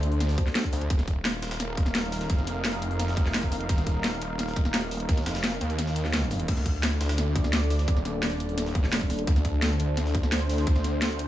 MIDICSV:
0, 0, Header, 1, 4, 480
1, 0, Start_track
1, 0, Tempo, 348837
1, 1241, Time_signature, 4, 2, 24, 8
1, 15520, End_track
2, 0, Start_track
2, 0, Title_t, "Analog synth pad"
2, 0, Program_c, 0, 89
2, 0, Note_on_c, 0, 62, 85
2, 0, Note_on_c, 0, 69, 81
2, 0, Note_on_c, 0, 72, 94
2, 1186, Note_off_c, 0, 62, 0
2, 1186, Note_off_c, 0, 69, 0
2, 1203, Note_off_c, 0, 72, 0
2, 1241, Note_on_c, 0, 63, 89
2, 1241, Note_on_c, 0, 70, 80
2, 1241, Note_on_c, 0, 77, 98
2, 8866, Note_off_c, 0, 63, 0
2, 8866, Note_off_c, 0, 70, 0
2, 8866, Note_off_c, 0, 77, 0
2, 8921, Note_on_c, 0, 62, 86
2, 8921, Note_on_c, 0, 69, 80
2, 8921, Note_on_c, 0, 74, 97
2, 12723, Note_off_c, 0, 74, 0
2, 12761, Note_on_c, 0, 72, 98
2, 15520, Note_off_c, 0, 62, 0
2, 15520, Note_off_c, 0, 69, 0
2, 15520, Note_off_c, 0, 72, 0
2, 15520, End_track
3, 0, Start_track
3, 0, Title_t, "Detuned saw bass"
3, 0, Program_c, 1, 39
3, 0, Note_on_c, 1, 38, 92
3, 502, Note_off_c, 1, 38, 0
3, 1000, Note_on_c, 1, 38, 98
3, 1221, Note_off_c, 1, 38, 0
3, 1241, Note_on_c, 1, 27, 96
3, 1942, Note_off_c, 1, 27, 0
3, 1961, Note_on_c, 1, 27, 98
3, 3142, Note_off_c, 1, 27, 0
3, 3161, Note_on_c, 1, 29, 92
3, 5062, Note_off_c, 1, 29, 0
3, 5081, Note_on_c, 1, 27, 94
3, 5782, Note_off_c, 1, 27, 0
3, 5800, Note_on_c, 1, 27, 101
3, 6981, Note_off_c, 1, 27, 0
3, 7001, Note_on_c, 1, 39, 97
3, 7222, Note_off_c, 1, 39, 0
3, 7241, Note_on_c, 1, 29, 98
3, 7702, Note_off_c, 1, 29, 0
3, 7720, Note_on_c, 1, 39, 100
3, 8901, Note_off_c, 1, 39, 0
3, 8921, Note_on_c, 1, 38, 94
3, 9622, Note_off_c, 1, 38, 0
3, 9641, Note_on_c, 1, 38, 100
3, 10822, Note_off_c, 1, 38, 0
3, 10841, Note_on_c, 1, 27, 94
3, 12742, Note_off_c, 1, 27, 0
3, 12761, Note_on_c, 1, 38, 97
3, 13462, Note_off_c, 1, 38, 0
3, 13481, Note_on_c, 1, 38, 101
3, 14662, Note_off_c, 1, 38, 0
3, 14681, Note_on_c, 1, 38, 91
3, 15520, Note_off_c, 1, 38, 0
3, 15520, End_track
4, 0, Start_track
4, 0, Title_t, "Drums"
4, 41, Note_on_c, 9, 42, 68
4, 161, Note_off_c, 9, 42, 0
4, 161, Note_on_c, 9, 42, 45
4, 281, Note_off_c, 9, 42, 0
4, 281, Note_on_c, 9, 40, 59
4, 281, Note_on_c, 9, 42, 91
4, 401, Note_on_c, 9, 38, 59
4, 419, Note_off_c, 9, 40, 0
4, 419, Note_off_c, 9, 42, 0
4, 521, Note_on_c, 9, 36, 112
4, 521, Note_on_c, 9, 42, 71
4, 538, Note_off_c, 9, 38, 0
4, 641, Note_on_c, 9, 38, 38
4, 659, Note_off_c, 9, 36, 0
4, 659, Note_off_c, 9, 42, 0
4, 760, Note_off_c, 9, 38, 0
4, 760, Note_on_c, 9, 38, 126
4, 760, Note_on_c, 9, 42, 93
4, 761, Note_off_c, 9, 42, 0
4, 761, Note_on_c, 9, 42, 61
4, 881, Note_on_c, 9, 36, 64
4, 898, Note_off_c, 9, 38, 0
4, 899, Note_off_c, 9, 42, 0
4, 1000, Note_on_c, 9, 46, 80
4, 1001, Note_on_c, 9, 42, 70
4, 1019, Note_off_c, 9, 36, 0
4, 1120, Note_off_c, 9, 42, 0
4, 1120, Note_on_c, 9, 42, 37
4, 1138, Note_off_c, 9, 46, 0
4, 1240, Note_off_c, 9, 42, 0
4, 1240, Note_on_c, 9, 42, 92
4, 1241, Note_off_c, 9, 42, 0
4, 1241, Note_on_c, 9, 36, 122
4, 1241, Note_on_c, 9, 42, 93
4, 1360, Note_off_c, 9, 42, 0
4, 1360, Note_on_c, 9, 42, 45
4, 1361, Note_on_c, 9, 40, 31
4, 1379, Note_off_c, 9, 36, 0
4, 1481, Note_off_c, 9, 42, 0
4, 1481, Note_on_c, 9, 36, 61
4, 1481, Note_on_c, 9, 42, 74
4, 1498, Note_off_c, 9, 40, 0
4, 1618, Note_off_c, 9, 42, 0
4, 1619, Note_off_c, 9, 36, 0
4, 1721, Note_on_c, 9, 38, 120
4, 1721, Note_on_c, 9, 42, 92
4, 1858, Note_off_c, 9, 38, 0
4, 1858, Note_off_c, 9, 42, 0
4, 1961, Note_on_c, 9, 38, 102
4, 1961, Note_on_c, 9, 42, 65
4, 2081, Note_off_c, 9, 38, 0
4, 2081, Note_off_c, 9, 42, 0
4, 2081, Note_on_c, 9, 38, 108
4, 2081, Note_on_c, 9, 42, 80
4, 2201, Note_off_c, 9, 42, 0
4, 2201, Note_on_c, 9, 40, 55
4, 2201, Note_on_c, 9, 42, 93
4, 2218, Note_off_c, 9, 38, 0
4, 2338, Note_off_c, 9, 40, 0
4, 2338, Note_off_c, 9, 42, 0
4, 2440, Note_on_c, 9, 42, 71
4, 2441, Note_off_c, 9, 42, 0
4, 2441, Note_on_c, 9, 36, 110
4, 2441, Note_on_c, 9, 42, 64
4, 2560, Note_on_c, 9, 40, 44
4, 2578, Note_off_c, 9, 36, 0
4, 2578, Note_off_c, 9, 42, 0
4, 2680, Note_on_c, 9, 38, 112
4, 2680, Note_on_c, 9, 42, 83
4, 2681, Note_off_c, 9, 38, 0
4, 2681, Note_off_c, 9, 42, 0
4, 2681, Note_on_c, 9, 38, 120
4, 2681, Note_on_c, 9, 42, 94
4, 2698, Note_off_c, 9, 40, 0
4, 2818, Note_off_c, 9, 38, 0
4, 2818, Note_off_c, 9, 42, 0
4, 2920, Note_on_c, 9, 38, 47
4, 2920, Note_on_c, 9, 42, 72
4, 2921, Note_on_c, 9, 46, 85
4, 3041, Note_off_c, 9, 38, 0
4, 3041, Note_off_c, 9, 42, 0
4, 3041, Note_on_c, 9, 38, 51
4, 3041, Note_on_c, 9, 42, 38
4, 3058, Note_off_c, 9, 46, 0
4, 3160, Note_off_c, 9, 42, 0
4, 3160, Note_on_c, 9, 42, 90
4, 3161, Note_off_c, 9, 42, 0
4, 3161, Note_on_c, 9, 36, 118
4, 3161, Note_on_c, 9, 42, 93
4, 3179, Note_off_c, 9, 38, 0
4, 3281, Note_on_c, 9, 40, 31
4, 3298, Note_off_c, 9, 42, 0
4, 3299, Note_off_c, 9, 36, 0
4, 3401, Note_off_c, 9, 40, 0
4, 3401, Note_on_c, 9, 40, 32
4, 3401, Note_on_c, 9, 42, 72
4, 3538, Note_off_c, 9, 40, 0
4, 3539, Note_off_c, 9, 42, 0
4, 3640, Note_on_c, 9, 38, 118
4, 3640, Note_on_c, 9, 42, 94
4, 3641, Note_off_c, 9, 38, 0
4, 3641, Note_off_c, 9, 42, 0
4, 3641, Note_on_c, 9, 38, 123
4, 3641, Note_on_c, 9, 42, 92
4, 3762, Note_off_c, 9, 42, 0
4, 3762, Note_on_c, 9, 42, 46
4, 3779, Note_off_c, 9, 38, 0
4, 3880, Note_off_c, 9, 42, 0
4, 3880, Note_on_c, 9, 42, 69
4, 3881, Note_off_c, 9, 42, 0
4, 3881, Note_on_c, 9, 42, 69
4, 4002, Note_off_c, 9, 42, 0
4, 4002, Note_on_c, 9, 42, 46
4, 4121, Note_off_c, 9, 42, 0
4, 4121, Note_on_c, 9, 40, 53
4, 4121, Note_on_c, 9, 42, 93
4, 4241, Note_on_c, 9, 38, 58
4, 4259, Note_off_c, 9, 40, 0
4, 4259, Note_off_c, 9, 42, 0
4, 4361, Note_on_c, 9, 36, 108
4, 4361, Note_on_c, 9, 42, 73
4, 4379, Note_off_c, 9, 38, 0
4, 4481, Note_on_c, 9, 38, 36
4, 4499, Note_off_c, 9, 36, 0
4, 4499, Note_off_c, 9, 42, 0
4, 4601, Note_off_c, 9, 38, 0
4, 4601, Note_on_c, 9, 38, 118
4, 4601, Note_on_c, 9, 42, 95
4, 4601, Note_on_c, 9, 46, 81
4, 4721, Note_on_c, 9, 36, 60
4, 4738, Note_off_c, 9, 38, 0
4, 4738, Note_off_c, 9, 42, 0
4, 4738, Note_off_c, 9, 46, 0
4, 4840, Note_on_c, 9, 40, 35
4, 4840, Note_on_c, 9, 46, 86
4, 4841, Note_on_c, 9, 42, 70
4, 4859, Note_off_c, 9, 36, 0
4, 4960, Note_off_c, 9, 42, 0
4, 4960, Note_on_c, 9, 42, 39
4, 4978, Note_off_c, 9, 40, 0
4, 4978, Note_off_c, 9, 46, 0
4, 5080, Note_off_c, 9, 42, 0
4, 5080, Note_on_c, 9, 42, 96
4, 5081, Note_off_c, 9, 42, 0
4, 5081, Note_on_c, 9, 36, 119
4, 5081, Note_on_c, 9, 42, 94
4, 5200, Note_on_c, 9, 40, 33
4, 5201, Note_off_c, 9, 42, 0
4, 5201, Note_on_c, 9, 42, 45
4, 5218, Note_off_c, 9, 36, 0
4, 5320, Note_off_c, 9, 42, 0
4, 5320, Note_on_c, 9, 42, 68
4, 5321, Note_off_c, 9, 42, 0
4, 5321, Note_on_c, 9, 36, 57
4, 5321, Note_on_c, 9, 42, 74
4, 5338, Note_off_c, 9, 40, 0
4, 5459, Note_off_c, 9, 36, 0
4, 5459, Note_off_c, 9, 42, 0
4, 5561, Note_on_c, 9, 38, 118
4, 5561, Note_on_c, 9, 42, 90
4, 5698, Note_off_c, 9, 38, 0
4, 5698, Note_off_c, 9, 42, 0
4, 5801, Note_on_c, 9, 42, 68
4, 5939, Note_off_c, 9, 42, 0
4, 6041, Note_on_c, 9, 40, 58
4, 6041, Note_on_c, 9, 42, 87
4, 6161, Note_on_c, 9, 38, 41
4, 6179, Note_off_c, 9, 40, 0
4, 6179, Note_off_c, 9, 42, 0
4, 6281, Note_on_c, 9, 36, 105
4, 6281, Note_on_c, 9, 42, 69
4, 6299, Note_off_c, 9, 38, 0
4, 6401, Note_on_c, 9, 40, 46
4, 6418, Note_off_c, 9, 42, 0
4, 6419, Note_off_c, 9, 36, 0
4, 6521, Note_on_c, 9, 38, 115
4, 6521, Note_on_c, 9, 42, 84
4, 6538, Note_off_c, 9, 40, 0
4, 6658, Note_off_c, 9, 38, 0
4, 6658, Note_off_c, 9, 42, 0
4, 6761, Note_on_c, 9, 46, 81
4, 6881, Note_on_c, 9, 42, 41
4, 6898, Note_off_c, 9, 46, 0
4, 7001, Note_off_c, 9, 42, 0
4, 7001, Note_on_c, 9, 36, 121
4, 7001, Note_on_c, 9, 42, 97
4, 7121, Note_off_c, 9, 42, 0
4, 7121, Note_on_c, 9, 40, 35
4, 7121, Note_on_c, 9, 42, 38
4, 7139, Note_off_c, 9, 36, 0
4, 7241, Note_off_c, 9, 40, 0
4, 7241, Note_off_c, 9, 42, 0
4, 7241, Note_on_c, 9, 38, 107
4, 7241, Note_on_c, 9, 40, 34
4, 7241, Note_on_c, 9, 42, 71
4, 7361, Note_off_c, 9, 38, 0
4, 7361, Note_off_c, 9, 42, 0
4, 7361, Note_on_c, 9, 38, 108
4, 7361, Note_on_c, 9, 42, 81
4, 7379, Note_off_c, 9, 40, 0
4, 7480, Note_off_c, 9, 38, 0
4, 7480, Note_off_c, 9, 42, 0
4, 7480, Note_on_c, 9, 38, 109
4, 7480, Note_on_c, 9, 42, 82
4, 7481, Note_off_c, 9, 38, 0
4, 7481, Note_off_c, 9, 42, 0
4, 7481, Note_on_c, 9, 38, 116
4, 7481, Note_on_c, 9, 42, 99
4, 7600, Note_off_c, 9, 42, 0
4, 7600, Note_on_c, 9, 42, 44
4, 7618, Note_off_c, 9, 38, 0
4, 7720, Note_off_c, 9, 42, 0
4, 7720, Note_on_c, 9, 42, 71
4, 7721, Note_off_c, 9, 42, 0
4, 7721, Note_on_c, 9, 42, 69
4, 7841, Note_off_c, 9, 42, 0
4, 7841, Note_on_c, 9, 42, 47
4, 7961, Note_off_c, 9, 42, 0
4, 7961, Note_on_c, 9, 40, 59
4, 7961, Note_on_c, 9, 42, 90
4, 8081, Note_on_c, 9, 38, 59
4, 8098, Note_off_c, 9, 40, 0
4, 8098, Note_off_c, 9, 42, 0
4, 8201, Note_on_c, 9, 42, 73
4, 8219, Note_off_c, 9, 38, 0
4, 8321, Note_on_c, 9, 38, 34
4, 8339, Note_off_c, 9, 42, 0
4, 8441, Note_off_c, 9, 38, 0
4, 8441, Note_on_c, 9, 38, 120
4, 8441, Note_on_c, 9, 42, 98
4, 8579, Note_off_c, 9, 38, 0
4, 8579, Note_off_c, 9, 42, 0
4, 8681, Note_on_c, 9, 40, 38
4, 8681, Note_on_c, 9, 42, 80
4, 8681, Note_on_c, 9, 46, 79
4, 8801, Note_off_c, 9, 42, 0
4, 8801, Note_on_c, 9, 42, 42
4, 8819, Note_off_c, 9, 40, 0
4, 8819, Note_off_c, 9, 46, 0
4, 8921, Note_off_c, 9, 42, 0
4, 8921, Note_on_c, 9, 36, 118
4, 8921, Note_on_c, 9, 42, 98
4, 8921, Note_on_c, 9, 49, 78
4, 9041, Note_off_c, 9, 42, 0
4, 9041, Note_on_c, 9, 40, 35
4, 9041, Note_on_c, 9, 42, 44
4, 9058, Note_off_c, 9, 49, 0
4, 9059, Note_off_c, 9, 36, 0
4, 9161, Note_off_c, 9, 42, 0
4, 9161, Note_on_c, 9, 36, 60
4, 9161, Note_on_c, 9, 42, 72
4, 9178, Note_off_c, 9, 40, 0
4, 9299, Note_off_c, 9, 36, 0
4, 9299, Note_off_c, 9, 42, 0
4, 9401, Note_on_c, 9, 38, 120
4, 9401, Note_on_c, 9, 42, 91
4, 9539, Note_off_c, 9, 38, 0
4, 9539, Note_off_c, 9, 42, 0
4, 9641, Note_on_c, 9, 38, 103
4, 9641, Note_on_c, 9, 42, 81
4, 9761, Note_off_c, 9, 38, 0
4, 9761, Note_off_c, 9, 42, 0
4, 9761, Note_on_c, 9, 38, 110
4, 9761, Note_on_c, 9, 42, 84
4, 9881, Note_off_c, 9, 42, 0
4, 9881, Note_on_c, 9, 40, 60
4, 9881, Note_on_c, 9, 42, 91
4, 9899, Note_off_c, 9, 38, 0
4, 10018, Note_off_c, 9, 40, 0
4, 10019, Note_off_c, 9, 42, 0
4, 10121, Note_on_c, 9, 36, 112
4, 10121, Note_on_c, 9, 42, 72
4, 10241, Note_on_c, 9, 40, 49
4, 10259, Note_off_c, 9, 36, 0
4, 10259, Note_off_c, 9, 42, 0
4, 10361, Note_on_c, 9, 38, 113
4, 10361, Note_on_c, 9, 42, 89
4, 10379, Note_off_c, 9, 40, 0
4, 10499, Note_off_c, 9, 38, 0
4, 10499, Note_off_c, 9, 42, 0
4, 10601, Note_on_c, 9, 38, 46
4, 10601, Note_on_c, 9, 42, 69
4, 10601, Note_on_c, 9, 46, 77
4, 10721, Note_off_c, 9, 42, 0
4, 10721, Note_on_c, 9, 42, 41
4, 10722, Note_off_c, 9, 38, 0
4, 10722, Note_on_c, 9, 38, 51
4, 10738, Note_off_c, 9, 46, 0
4, 10841, Note_off_c, 9, 42, 0
4, 10841, Note_on_c, 9, 36, 127
4, 10841, Note_on_c, 9, 42, 94
4, 10859, Note_off_c, 9, 38, 0
4, 10960, Note_on_c, 9, 40, 34
4, 10979, Note_off_c, 9, 36, 0
4, 10979, Note_off_c, 9, 42, 0
4, 11081, Note_off_c, 9, 40, 0
4, 11081, Note_on_c, 9, 40, 36
4, 11081, Note_on_c, 9, 42, 72
4, 11218, Note_off_c, 9, 40, 0
4, 11219, Note_off_c, 9, 42, 0
4, 11320, Note_on_c, 9, 38, 127
4, 11320, Note_on_c, 9, 42, 96
4, 11322, Note_off_c, 9, 38, 0
4, 11322, Note_off_c, 9, 42, 0
4, 11322, Note_on_c, 9, 38, 118
4, 11322, Note_on_c, 9, 42, 91
4, 11442, Note_off_c, 9, 42, 0
4, 11442, Note_on_c, 9, 42, 45
4, 11459, Note_off_c, 9, 38, 0
4, 11561, Note_off_c, 9, 42, 0
4, 11561, Note_on_c, 9, 42, 71
4, 11681, Note_off_c, 9, 42, 0
4, 11681, Note_on_c, 9, 42, 48
4, 11801, Note_off_c, 9, 42, 0
4, 11801, Note_on_c, 9, 40, 59
4, 11801, Note_on_c, 9, 42, 97
4, 11802, Note_off_c, 9, 42, 0
4, 11802, Note_on_c, 9, 42, 90
4, 11921, Note_on_c, 9, 38, 60
4, 11939, Note_off_c, 9, 40, 0
4, 11939, Note_off_c, 9, 42, 0
4, 12041, Note_on_c, 9, 36, 115
4, 12041, Note_on_c, 9, 42, 71
4, 12059, Note_off_c, 9, 38, 0
4, 12161, Note_on_c, 9, 38, 37
4, 12179, Note_off_c, 9, 36, 0
4, 12179, Note_off_c, 9, 42, 0
4, 12281, Note_off_c, 9, 38, 0
4, 12281, Note_on_c, 9, 38, 126
4, 12281, Note_on_c, 9, 42, 96
4, 12281, Note_on_c, 9, 46, 80
4, 12401, Note_on_c, 9, 36, 67
4, 12418, Note_off_c, 9, 46, 0
4, 12419, Note_off_c, 9, 38, 0
4, 12419, Note_off_c, 9, 42, 0
4, 12521, Note_on_c, 9, 40, 38
4, 12521, Note_on_c, 9, 42, 72
4, 12521, Note_on_c, 9, 46, 79
4, 12539, Note_off_c, 9, 36, 0
4, 12641, Note_off_c, 9, 42, 0
4, 12641, Note_on_c, 9, 42, 39
4, 12658, Note_off_c, 9, 40, 0
4, 12658, Note_off_c, 9, 46, 0
4, 12761, Note_off_c, 9, 42, 0
4, 12761, Note_on_c, 9, 36, 127
4, 12761, Note_on_c, 9, 42, 91
4, 12881, Note_off_c, 9, 42, 0
4, 12881, Note_on_c, 9, 40, 34
4, 12881, Note_on_c, 9, 42, 46
4, 12899, Note_off_c, 9, 36, 0
4, 13000, Note_off_c, 9, 42, 0
4, 13000, Note_on_c, 9, 42, 65
4, 13001, Note_off_c, 9, 42, 0
4, 13001, Note_on_c, 9, 36, 65
4, 13001, Note_on_c, 9, 42, 70
4, 13019, Note_off_c, 9, 40, 0
4, 13138, Note_off_c, 9, 42, 0
4, 13139, Note_off_c, 9, 36, 0
4, 13241, Note_on_c, 9, 38, 122
4, 13241, Note_on_c, 9, 42, 90
4, 13378, Note_off_c, 9, 38, 0
4, 13378, Note_off_c, 9, 42, 0
4, 13481, Note_on_c, 9, 42, 69
4, 13618, Note_off_c, 9, 42, 0
4, 13720, Note_on_c, 9, 42, 87
4, 13721, Note_off_c, 9, 42, 0
4, 13721, Note_on_c, 9, 40, 61
4, 13721, Note_on_c, 9, 42, 94
4, 13841, Note_on_c, 9, 38, 41
4, 13858, Note_off_c, 9, 40, 0
4, 13858, Note_off_c, 9, 42, 0
4, 13961, Note_on_c, 9, 36, 115
4, 13961, Note_on_c, 9, 42, 72
4, 13978, Note_off_c, 9, 38, 0
4, 14081, Note_on_c, 9, 40, 49
4, 14099, Note_off_c, 9, 36, 0
4, 14099, Note_off_c, 9, 42, 0
4, 14201, Note_on_c, 9, 38, 125
4, 14201, Note_on_c, 9, 42, 95
4, 14219, Note_off_c, 9, 40, 0
4, 14339, Note_off_c, 9, 38, 0
4, 14339, Note_off_c, 9, 42, 0
4, 14441, Note_on_c, 9, 38, 48
4, 14441, Note_on_c, 9, 42, 68
4, 14441, Note_on_c, 9, 46, 78
4, 14561, Note_off_c, 9, 38, 0
4, 14561, Note_off_c, 9, 42, 0
4, 14561, Note_on_c, 9, 38, 50
4, 14561, Note_on_c, 9, 42, 38
4, 14579, Note_off_c, 9, 46, 0
4, 14681, Note_off_c, 9, 42, 0
4, 14681, Note_on_c, 9, 36, 125
4, 14681, Note_on_c, 9, 42, 91
4, 14698, Note_off_c, 9, 38, 0
4, 14801, Note_on_c, 9, 40, 33
4, 14819, Note_off_c, 9, 36, 0
4, 14819, Note_off_c, 9, 42, 0
4, 14921, Note_off_c, 9, 40, 0
4, 14921, Note_on_c, 9, 40, 34
4, 14921, Note_on_c, 9, 42, 66
4, 15059, Note_off_c, 9, 40, 0
4, 15059, Note_off_c, 9, 42, 0
4, 15161, Note_on_c, 9, 38, 119
4, 15161, Note_on_c, 9, 42, 90
4, 15281, Note_off_c, 9, 42, 0
4, 15281, Note_on_c, 9, 42, 45
4, 15299, Note_off_c, 9, 38, 0
4, 15401, Note_off_c, 9, 42, 0
4, 15401, Note_on_c, 9, 42, 70
4, 15520, Note_off_c, 9, 42, 0
4, 15520, End_track
0, 0, End_of_file